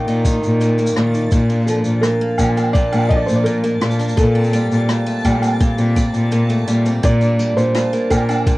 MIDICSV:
0, 0, Header, 1, 6, 480
1, 0, Start_track
1, 0, Tempo, 714286
1, 888, Time_signature, 4, 2, 24, 8
1, 5765, End_track
2, 0, Start_track
2, 0, Title_t, "Synth texture"
2, 0, Program_c, 0, 99
2, 0, Note_on_c, 0, 81, 80
2, 0, Note_on_c, 0, 93, 78
2, 5765, Note_off_c, 0, 81, 0
2, 5765, Note_off_c, 0, 93, 0
2, 5765, End_track
3, 0, Start_track
3, 0, Title_t, "Felt piano"
3, 0, Program_c, 1, 0
3, 0, Note_on_c, 1, 79, 91
3, 615, Note_off_c, 1, 79, 0
3, 1118, Note_on_c, 1, 69, 74
3, 1174, Note_off_c, 1, 69, 0
3, 1353, Note_on_c, 1, 70, 87
3, 1835, Note_on_c, 1, 74, 100
3, 1855, Note_off_c, 1, 70, 0
3, 2075, Note_on_c, 1, 75, 81
3, 2084, Note_off_c, 1, 74, 0
3, 2125, Note_on_c, 1, 74, 86
3, 2140, Note_off_c, 1, 75, 0
3, 2193, Note_on_c, 1, 72, 90
3, 2196, Note_off_c, 1, 74, 0
3, 2257, Note_on_c, 1, 74, 80
3, 2261, Note_off_c, 1, 72, 0
3, 2311, Note_on_c, 1, 70, 92
3, 2323, Note_off_c, 1, 74, 0
3, 2802, Note_on_c, 1, 69, 83
3, 2814, Note_off_c, 1, 70, 0
3, 4458, Note_off_c, 1, 69, 0
3, 4736, Note_on_c, 1, 74, 107
3, 5085, Note_on_c, 1, 72, 100
3, 5103, Note_off_c, 1, 74, 0
3, 5445, Note_on_c, 1, 70, 102
3, 5457, Note_off_c, 1, 72, 0
3, 5765, Note_off_c, 1, 70, 0
3, 5765, End_track
4, 0, Start_track
4, 0, Title_t, "Steel-string acoustic guitar"
4, 0, Program_c, 2, 25
4, 0, Note_on_c, 2, 46, 77
4, 0, Note_on_c, 2, 51, 66
4, 0, Note_on_c, 2, 58, 59
4, 53, Note_on_c, 2, 63, 61
4, 163, Note_off_c, 2, 51, 0
4, 171, Note_on_c, 2, 51, 69
4, 402, Note_off_c, 2, 46, 0
4, 410, Note_on_c, 2, 46, 73
4, 527, Note_off_c, 2, 58, 0
4, 530, Note_on_c, 2, 58, 59
4, 641, Note_off_c, 2, 51, 0
4, 649, Note_on_c, 2, 51, 66
4, 762, Note_off_c, 2, 63, 0
4, 770, Note_on_c, 2, 63, 53
4, 880, Note_off_c, 2, 46, 0
4, 888, Note_on_c, 2, 46, 84
4, 936, Note_off_c, 2, 51, 0
4, 937, Note_off_c, 2, 63, 0
4, 1006, Note_on_c, 2, 62, 58
4, 1130, Note_on_c, 2, 53, 71
4, 1358, Note_off_c, 2, 46, 0
4, 1366, Note_on_c, 2, 46, 74
4, 1483, Note_off_c, 2, 58, 0
4, 1486, Note_on_c, 2, 58, 61
4, 1605, Note_off_c, 2, 53, 0
4, 1608, Note_on_c, 2, 53, 63
4, 1720, Note_off_c, 2, 62, 0
4, 1728, Note_on_c, 2, 62, 58
4, 1840, Note_off_c, 2, 46, 0
4, 1848, Note_on_c, 2, 46, 73
4, 1958, Note_off_c, 2, 62, 0
4, 1966, Note_on_c, 2, 62, 63
4, 2085, Note_off_c, 2, 53, 0
4, 2088, Note_on_c, 2, 53, 68
4, 2317, Note_off_c, 2, 46, 0
4, 2325, Note_on_c, 2, 46, 78
4, 2436, Note_off_c, 2, 58, 0
4, 2444, Note_on_c, 2, 58, 61
4, 2559, Note_off_c, 2, 53, 0
4, 2562, Note_on_c, 2, 53, 67
4, 2675, Note_off_c, 2, 62, 0
4, 2683, Note_on_c, 2, 62, 56
4, 2795, Note_off_c, 2, 46, 0
4, 2803, Note_on_c, 2, 46, 83
4, 2854, Note_off_c, 2, 58, 0
4, 2854, Note_off_c, 2, 62, 0
4, 2923, Note_on_c, 2, 60, 61
4, 3043, Note_off_c, 2, 53, 0
4, 3045, Note_on_c, 2, 55, 74
4, 3278, Note_off_c, 2, 46, 0
4, 3286, Note_on_c, 2, 46, 76
4, 3404, Note_on_c, 2, 57, 63
4, 3523, Note_off_c, 2, 55, 0
4, 3526, Note_on_c, 2, 55, 71
4, 3639, Note_off_c, 2, 60, 0
4, 3647, Note_on_c, 2, 60, 60
4, 3758, Note_off_c, 2, 46, 0
4, 3766, Note_on_c, 2, 46, 80
4, 3878, Note_off_c, 2, 60, 0
4, 3886, Note_on_c, 2, 60, 63
4, 4004, Note_off_c, 2, 55, 0
4, 4007, Note_on_c, 2, 55, 73
4, 4239, Note_off_c, 2, 46, 0
4, 4247, Note_on_c, 2, 46, 79
4, 4358, Note_off_c, 2, 57, 0
4, 4366, Note_on_c, 2, 57, 62
4, 4484, Note_off_c, 2, 55, 0
4, 4487, Note_on_c, 2, 55, 71
4, 4601, Note_off_c, 2, 60, 0
4, 4609, Note_on_c, 2, 60, 56
4, 4718, Note_off_c, 2, 46, 0
4, 4726, Note_on_c, 2, 46, 95
4, 4775, Note_off_c, 2, 57, 0
4, 4777, Note_off_c, 2, 60, 0
4, 4846, Note_on_c, 2, 62, 61
4, 4964, Note_off_c, 2, 55, 0
4, 4967, Note_on_c, 2, 55, 70
4, 5197, Note_off_c, 2, 46, 0
4, 5205, Note_on_c, 2, 46, 77
4, 5328, Note_on_c, 2, 58, 61
4, 5443, Note_off_c, 2, 55, 0
4, 5446, Note_on_c, 2, 55, 62
4, 5561, Note_off_c, 2, 62, 0
4, 5569, Note_on_c, 2, 62, 63
4, 5682, Note_off_c, 2, 46, 0
4, 5690, Note_on_c, 2, 46, 81
4, 5765, Note_off_c, 2, 46, 0
4, 5765, Note_off_c, 2, 55, 0
4, 5765, Note_off_c, 2, 58, 0
4, 5765, Note_off_c, 2, 62, 0
4, 5765, End_track
5, 0, Start_track
5, 0, Title_t, "Cello"
5, 0, Program_c, 3, 42
5, 45, Note_on_c, 3, 46, 88
5, 227, Note_off_c, 3, 46, 0
5, 285, Note_on_c, 3, 46, 88
5, 599, Note_off_c, 3, 46, 0
5, 645, Note_on_c, 3, 46, 82
5, 827, Note_off_c, 3, 46, 0
5, 887, Note_on_c, 3, 46, 89
5, 1200, Note_off_c, 3, 46, 0
5, 1246, Note_on_c, 3, 46, 82
5, 1337, Note_off_c, 3, 46, 0
5, 1606, Note_on_c, 3, 46, 93
5, 1697, Note_off_c, 3, 46, 0
5, 1968, Note_on_c, 3, 46, 95
5, 2148, Note_off_c, 3, 46, 0
5, 2208, Note_on_c, 3, 46, 85
5, 2520, Note_off_c, 3, 46, 0
5, 2569, Note_on_c, 3, 46, 83
5, 2748, Note_off_c, 3, 46, 0
5, 2807, Note_on_c, 3, 46, 99
5, 3120, Note_off_c, 3, 46, 0
5, 3172, Note_on_c, 3, 46, 89
5, 3260, Note_off_c, 3, 46, 0
5, 3527, Note_on_c, 3, 46, 95
5, 3618, Note_off_c, 3, 46, 0
5, 3884, Note_on_c, 3, 46, 98
5, 4066, Note_off_c, 3, 46, 0
5, 4128, Note_on_c, 3, 46, 86
5, 4440, Note_off_c, 3, 46, 0
5, 4488, Note_on_c, 3, 46, 86
5, 4668, Note_off_c, 3, 46, 0
5, 4730, Note_on_c, 3, 46, 98
5, 5041, Note_off_c, 3, 46, 0
5, 5084, Note_on_c, 3, 46, 86
5, 5176, Note_off_c, 3, 46, 0
5, 5448, Note_on_c, 3, 46, 90
5, 5538, Note_off_c, 3, 46, 0
5, 5765, End_track
6, 0, Start_track
6, 0, Title_t, "Drums"
6, 54, Note_on_c, 9, 82, 41
6, 121, Note_off_c, 9, 82, 0
6, 166, Note_on_c, 9, 36, 103
6, 170, Note_on_c, 9, 82, 89
6, 233, Note_off_c, 9, 36, 0
6, 237, Note_off_c, 9, 82, 0
6, 291, Note_on_c, 9, 82, 48
6, 358, Note_off_c, 9, 82, 0
6, 408, Note_on_c, 9, 82, 59
6, 475, Note_off_c, 9, 82, 0
6, 524, Note_on_c, 9, 82, 37
6, 582, Note_off_c, 9, 82, 0
6, 582, Note_on_c, 9, 82, 88
6, 646, Note_on_c, 9, 37, 65
6, 649, Note_off_c, 9, 82, 0
6, 713, Note_off_c, 9, 37, 0
6, 768, Note_on_c, 9, 82, 48
6, 835, Note_off_c, 9, 82, 0
6, 880, Note_on_c, 9, 82, 58
6, 886, Note_on_c, 9, 36, 109
6, 948, Note_off_c, 9, 82, 0
6, 953, Note_off_c, 9, 36, 0
6, 1006, Note_on_c, 9, 82, 44
6, 1073, Note_off_c, 9, 82, 0
6, 1125, Note_on_c, 9, 82, 76
6, 1192, Note_off_c, 9, 82, 0
6, 1238, Note_on_c, 9, 82, 54
6, 1305, Note_off_c, 9, 82, 0
6, 1362, Note_on_c, 9, 37, 71
6, 1366, Note_on_c, 9, 82, 50
6, 1430, Note_off_c, 9, 37, 0
6, 1433, Note_off_c, 9, 82, 0
6, 1598, Note_on_c, 9, 77, 75
6, 1604, Note_on_c, 9, 82, 83
6, 1605, Note_on_c, 9, 36, 59
6, 1665, Note_off_c, 9, 77, 0
6, 1671, Note_off_c, 9, 82, 0
6, 1672, Note_off_c, 9, 36, 0
6, 1729, Note_on_c, 9, 77, 72
6, 1729, Note_on_c, 9, 82, 43
6, 1796, Note_off_c, 9, 77, 0
6, 1796, Note_off_c, 9, 82, 0
6, 1846, Note_on_c, 9, 36, 119
6, 1849, Note_on_c, 9, 82, 54
6, 1913, Note_off_c, 9, 36, 0
6, 1916, Note_off_c, 9, 82, 0
6, 1965, Note_on_c, 9, 77, 72
6, 1971, Note_on_c, 9, 82, 40
6, 2032, Note_off_c, 9, 77, 0
6, 2038, Note_off_c, 9, 82, 0
6, 2086, Note_on_c, 9, 36, 93
6, 2153, Note_off_c, 9, 36, 0
6, 2204, Note_on_c, 9, 82, 48
6, 2212, Note_off_c, 9, 82, 0
6, 2212, Note_on_c, 9, 82, 80
6, 2279, Note_off_c, 9, 82, 0
6, 2323, Note_on_c, 9, 82, 54
6, 2390, Note_off_c, 9, 82, 0
6, 2448, Note_on_c, 9, 82, 39
6, 2515, Note_off_c, 9, 82, 0
6, 2563, Note_on_c, 9, 37, 66
6, 2566, Note_on_c, 9, 82, 33
6, 2626, Note_off_c, 9, 82, 0
6, 2626, Note_on_c, 9, 82, 44
6, 2630, Note_off_c, 9, 37, 0
6, 2687, Note_off_c, 9, 82, 0
6, 2687, Note_on_c, 9, 82, 54
6, 2746, Note_off_c, 9, 82, 0
6, 2746, Note_on_c, 9, 82, 61
6, 2806, Note_on_c, 9, 36, 105
6, 2810, Note_off_c, 9, 82, 0
6, 2810, Note_on_c, 9, 82, 52
6, 2873, Note_off_c, 9, 36, 0
6, 2877, Note_off_c, 9, 82, 0
6, 2983, Note_on_c, 9, 82, 36
6, 3047, Note_off_c, 9, 82, 0
6, 3047, Note_on_c, 9, 82, 65
6, 3114, Note_off_c, 9, 82, 0
6, 3169, Note_on_c, 9, 82, 42
6, 3236, Note_off_c, 9, 82, 0
6, 3285, Note_on_c, 9, 37, 69
6, 3289, Note_on_c, 9, 82, 53
6, 3352, Note_off_c, 9, 37, 0
6, 3357, Note_off_c, 9, 82, 0
6, 3409, Note_on_c, 9, 82, 38
6, 3477, Note_off_c, 9, 82, 0
6, 3527, Note_on_c, 9, 36, 54
6, 3528, Note_on_c, 9, 82, 69
6, 3531, Note_on_c, 9, 77, 75
6, 3594, Note_off_c, 9, 36, 0
6, 3595, Note_off_c, 9, 82, 0
6, 3598, Note_off_c, 9, 77, 0
6, 3642, Note_on_c, 9, 77, 72
6, 3653, Note_on_c, 9, 82, 50
6, 3709, Note_off_c, 9, 77, 0
6, 3721, Note_off_c, 9, 82, 0
6, 3767, Note_on_c, 9, 36, 117
6, 3767, Note_on_c, 9, 82, 53
6, 3834, Note_off_c, 9, 36, 0
6, 3835, Note_off_c, 9, 82, 0
6, 3885, Note_on_c, 9, 82, 40
6, 3952, Note_off_c, 9, 82, 0
6, 4007, Note_on_c, 9, 36, 85
6, 4010, Note_on_c, 9, 82, 78
6, 4075, Note_off_c, 9, 36, 0
6, 4077, Note_off_c, 9, 82, 0
6, 4125, Note_on_c, 9, 82, 50
6, 4192, Note_off_c, 9, 82, 0
6, 4244, Note_on_c, 9, 82, 53
6, 4311, Note_off_c, 9, 82, 0
6, 4365, Note_on_c, 9, 82, 37
6, 4432, Note_off_c, 9, 82, 0
6, 4492, Note_on_c, 9, 82, 74
6, 4560, Note_off_c, 9, 82, 0
6, 4607, Note_on_c, 9, 82, 45
6, 4674, Note_off_c, 9, 82, 0
6, 4728, Note_on_c, 9, 36, 109
6, 4732, Note_on_c, 9, 82, 58
6, 4796, Note_off_c, 9, 36, 0
6, 4799, Note_off_c, 9, 82, 0
6, 4851, Note_on_c, 9, 82, 41
6, 4918, Note_off_c, 9, 82, 0
6, 4971, Note_on_c, 9, 82, 71
6, 5038, Note_off_c, 9, 82, 0
6, 5092, Note_on_c, 9, 82, 52
6, 5159, Note_off_c, 9, 82, 0
6, 5208, Note_on_c, 9, 37, 69
6, 5214, Note_on_c, 9, 82, 52
6, 5275, Note_off_c, 9, 37, 0
6, 5281, Note_off_c, 9, 82, 0
6, 5335, Note_on_c, 9, 82, 37
6, 5402, Note_off_c, 9, 82, 0
6, 5448, Note_on_c, 9, 36, 59
6, 5450, Note_on_c, 9, 77, 71
6, 5451, Note_on_c, 9, 82, 77
6, 5516, Note_off_c, 9, 36, 0
6, 5517, Note_off_c, 9, 77, 0
6, 5518, Note_off_c, 9, 82, 0
6, 5570, Note_on_c, 9, 77, 82
6, 5579, Note_on_c, 9, 82, 50
6, 5638, Note_off_c, 9, 77, 0
6, 5646, Note_off_c, 9, 82, 0
6, 5689, Note_on_c, 9, 36, 109
6, 5693, Note_on_c, 9, 82, 56
6, 5756, Note_off_c, 9, 36, 0
6, 5760, Note_off_c, 9, 82, 0
6, 5765, End_track
0, 0, End_of_file